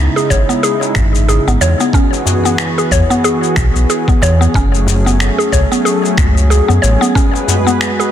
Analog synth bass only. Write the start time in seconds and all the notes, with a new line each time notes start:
0.30 G#1
0.96 G#1
1.47 G#1
1.61 E2
2.91 E2
3.56 B1
3.75 B1
4.22 E2
4.54 F#1
5.52 C#2
6.18 C#2
6.69 F#2
6.83 A1